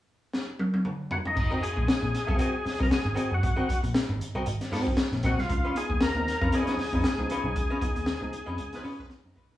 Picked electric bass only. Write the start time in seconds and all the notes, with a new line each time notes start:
1.37 G#1
1.77 A#1
2.03 A#1
2.29 C2
2.66 muted picked electric bass stroke
2.80 C2
2.91 muted picked electric bass stroke
3.05 G#1
3.32 F#1
3.43 G#1
3.84 A#1
4.09 G#1
4.35 C2
4.46 G#1
4.72 G#2
5.12 A#1
5.24 A#1
5.38 C2
5.49 C#2
5.90 D#2
6.15 D#2
6.42 F2
6.77 muted picked electric bass stroke
6.93 F2
7.03 muted picked electric bass stroke
7.18 C#2
7.44 B1
7.56 C#2
7.96 D#2
8.22 C#2
8.47 F2
8.58 C#2
8.84 C#3
9.24 F#2
9.36 A#1
9.50 B1